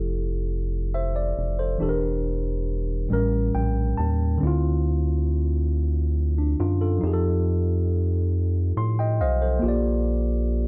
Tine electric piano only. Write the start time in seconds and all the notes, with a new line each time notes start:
Already playing: F3 E4 G4 A4
0.94 C5 E5
1.16 D5
1.59 A4 C5
1.78 E3 D4 G4
1.83 A4
1.89 A#4
3.09 A2 G3 C#4
3.13 A#4
3.55 G5
3.97 A5
4.38 D3 C4
4.44 E4 F4
6.38 D4
6.60 D4 F4
6.81 F4 A4
6.98 F3 D#4
7.04 G4 G#4
7.13 A4
8.77 C6
8.99 D#5 G5
9.21 C5 D#5 F5
9.42 A4 C5
9.59 A#3 F4
9.65 G4 D5